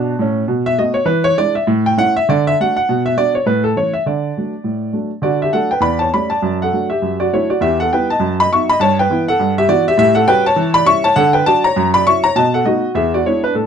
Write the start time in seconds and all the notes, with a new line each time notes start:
Already playing: B2 D4 A5
0.19 A2 C#4
0.48 B2
0.66 E5
0.78 A3 B3 F#4 D#5
0.94 C#5
1.05 E3 B4
1.24 C#5
1.37 G#3 D4 E4 D5
1.55 E5
1.67 A2
1.86 G5
1.97 A3 C#4 E4 F#5
2.17 E5
2.29 D3 D5
2.47 E5
2.60 A3 D4 F#4 F#5
2.76 F#5
2.89 B2
3.06 E5
3.17 B3 D4 F#4 D5
3.35 C#5
3.46 A2 B4
3.64 A4
3.76 E3 A3 C#4 C#5
3.93 E5
4.06 D3 D5
4.37 F#3 A3 D4
4.64 A2
4.92 F#3 A3 D4
5.22 D3 F#4 D5
5.42 G4 E5
5.52 F#3 A3 D4 A4 F#5
5.71 B4 G5
5.80 E2 D5 B5
5.99 C#5 A5
6.13 G3 A3 C#4 D5 B5
6.30 D5 A5
6.42 F#2
6.62 A4 F#5
6.73 F#3 A3 D4
6.90 G4 E5
7.02 F#2
7.20 F#4 D5
7.33 F#3 A3 D4 E4 C#5
7.50 F#4 D5
7.61 E2 G4 E5
7.80 A4 F#5
7.92 G3 B3 E4 B4 G5
8.10 D#5 A5
8.19 F#2
8.40 D#5 B5
8.53 F#3 B3 D#4 E5 C#6
8.69 D#5 B5
8.80 G2 C#5 A5
8.99 B4 G5
9.10 E3 B3 E4
9.28 A4 F#5
9.39 G2
9.58 G4 E5
9.68 E3 B3 E4 F#4 D5
9.88 G4 E5
9.98 A2 G4 E5
10.15 A4 F#5
10.27 G3 C#4 F#4 B4 G5
10.46 C#5 A5
10.56 E3
10.74 D5 B5
10.85 G3 C#4 E4 E5 C#6
11.04 C#5 A5
11.16 D3 A4 F#5
11.33 B4 G5
11.46 F#3 D4 F#4 D5 A5
11.64 C#5 A#5
11.76 F#2
11.94 D5 B5
12.06 F#3 C#4 E4 E5 C#6
12.24 C#5 A#5
12.36 B2 D#5 A5
12.54 A4 F#5
12.65 A3 B3 D#4 F#4 D#5
12.95 E2 G#4 E5
13.14 F#4 D5
13.25 G#3 B3 D4 E4 C#5
13.44 D4 B4
13.55 A2 D4 A4